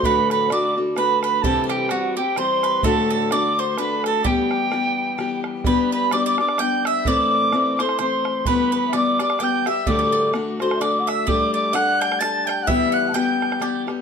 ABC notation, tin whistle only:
X:1
M:3/4
L:1/16
Q:"Swing" 1/4=128
K:Em
V:1 name="Tin whistle"
b2 b2 d'2 z2 b2 b2 | a3/2 a/2 g2 f2 g2 c'4 | a2 a2 d'2 c'2 b2 a2 | g8- g2 z2 |
[K:G] b2 b2 d'/2 d'/2 d' d'2 g'2 e'2 | d'4- d'3/2 d'/2 c'2 c'4 | b2 b2 d'2 d'2 g'2 e'2 | d'3- d'/2 z2 z/2 c'2 d'2 e'2 |
d'2 d'2 f'2 g'2 a'2 g'3/2 f'/2 | e'2 f'2 g'6 z2 |]